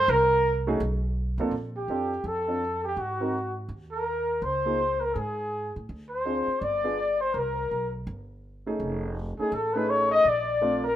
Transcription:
0.00 0.11 C5 medium
0.00 0.12 C5 loud
0.08 0.77 C2 medium
0.08 0.68 A#4 medium
0.08 0.69 A#4 medium
0.67 0.79 A3 medium
0.67 0.79 C#4 medium
0.67 0.80 D#4 medium
0.67 0.80 F#4 medium
0.67 0.80 G#4 medium
0.80 1.35 B1 medium
1.38 1.51 F2 medium
1.38 1.52 A#3 medium
1.38 1.52 C4 medium
1.38 1.52 D4 medium
1.38 1.52 F4 medium
1.38 1.52 A4 medium
1.51 1.86 A#1 medium
1.77 2.27 G4 medium
1.77 2.30 G4 medium
1.88 2.23 F2 medium
1.88 2.10 C4 soft
1.88 2.10 D4 soft
1.88 2.11 F4 soft
1.88 2.11 A4 soft
2.24 2.94 F2 medium
2.24 2.83 A4 medium
2.28 2.86 A4 medium
2.48 2.60 C4 soft
2.48 2.61 D4 soft
2.48 2.61 F4 soft
2.48 2.61 A4 soft
2.84 2.99 G4 medium
2.84 3.03 G4 medium
2.96 3.67 G#2 medium
2.96 3.57 F#4 medium
3.01 3.59 F#4 medium
3.20 3.33 C4 soft
3.20 3.33 D#4 soft
3.20 3.33 F#4 soft
3.20 3.34 A#4 medium
3.69 4.39 D#2 medium
3.91 4.44 A#4 medium
3.96 4.48 A#4 medium
4.42 5.12 C#2 medium
4.42 5.02 C5 medium
4.46 5.07 C5 medium
4.65 4.78 A#3 soft
4.65 4.79 D#4 soft
4.65 4.79 F4 soft
4.65 4.79 G#4 medium
5.00 5.15 A#4 medium
5.05 5.20 A#4 medium
5.14 5.71 G#2 medium
5.14 5.75 G#4 soft
5.19 5.77 G#4 medium
5.76 5.88 A2 medium
5.89 6.45 D2 medium
6.09 6.62 C5 medium
6.14 6.66 C5 medium
6.25 6.46 C4 soft
6.25 6.46 D4 soft
6.25 6.46 F4 soft
6.25 6.47 G#4 soft
6.47 muted upright bass stroke soft
6.61 7.31 G1 medium
6.61 7.20 D5 medium
6.61 7.23 D5 medium
6.84 6.97 B3 soft
6.84 6.97 D4 soft
6.84 6.97 F4 soft
6.84 6.97 G#4 medium
7.20 7.35 C5 medium
7.20 7.41 C5 medium
7.34 7.68 C2 medium
7.34 7.94 A#4 medium
7.39 7.96 A#4 medium
7.71 8.05 B1 medium
8.07 8.76 G1 medium
8.66 9.14 A3 medium
8.66 9.14 C#4 soft
8.66 9.14 D#4 medium
8.66 9.14 G#4 medium
8.80 9.35 F1 medium
9.39 9.52 A3 soft
9.39 9.52 C#4 soft
9.39 9.52 D#4 soft
9.39 9.55 G#4 medium
9.39 9.52 G#4 medium
9.39 9.57 G#4 medium
9.39 muted upright bass stroke soft
9.52 10.22 A1 medium
9.52 9.75 A4 medium
9.56 9.80 A4 medium
9.73 10.23 A3 medium
9.73 10.23 C#4 medium
9.73 10.24 D#4 medium
9.73 10.24 G#4 medium
9.73 9.91 B4 medium
9.78 9.92 B4 medium
9.89 10.11 C#5 medium
9.89 10.13 C#5 medium
10.11 10.28 D#5 medium
10.11 10.31 D#5 loud
10.25 10.95 A#1 medium
10.25 10.83 D5 medium
10.29 10.87 D5 medium
10.61 10.83 A3 medium
10.61 10.83 C4 medium
10.61 10.83 D4 medium
10.61 10.83 F4 medium
10.83 10.96 A#4 medium
10.88 10.96 A#4 medium

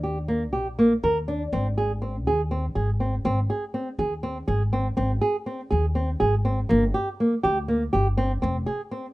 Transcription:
0.00 0.54 D#2 medium
0.00 0.17 G4 medium
0.28 0.42 A#3 medium
0.53 0.97 A#1 medium
0.53 0.67 G4 medium
0.79 0.92 A#3 medium
1.03 1.46 D#2 medium
1.03 1.17 A#4 medium
1.28 1.42 D4 medium
1.53 2.27 G#1 medium
1.53 1.66 C4 medium
1.78 1.91 G#4 medium
2.02 2.15 C4 medium
2.27 2.69 D#2 medium
2.27 2.41 G#4 medium
2.51 2.65 C4 medium
2.75 3.18 G#1 medium
2.75 2.89 G#4 medium
3.00 3.14 C4 medium
3.25 3.46 G#1 medium
3.25 3.39 C4 medium
3.50 3.63 G#4 medium
3.74 3.88 C4 medium
3.99 4.41 D#2 medium
3.99 4.13 G#4 medium
4.23 4.37 C4 medium
4.48 4.91 G#1 medium
4.48 4.61 G#4 medium
4.73 4.87 C4 medium
4.97 5.19 G#1 medium
4.97 5.11 C4 medium
5.21 5.35 G#4 medium
5.46 5.60 C4 medium
5.71 6.14 D#2 medium
5.71 5.85 G#4 medium
5.95 6.09 C4 medium
6.20 6.64 G#1 medium
6.20 6.34 G#4 medium
6.45 6.59 C4 medium
6.69 6.92 G1 medium
6.69 6.83 A#3 medium
6.94 7.08 G4 medium
7.20 7.34 A#3 medium
7.43 7.87 D2 medium
7.43 7.57 G4 medium
7.68 7.82 A#3 medium
7.93 8.37 G1 medium
7.93 8.07 G4 medium
8.17 8.31 C4 medium
8.42 8.64 F1 medium
8.42 8.56 C4 medium
8.66 8.80 G#4 medium
8.91 9.05 C4 medium

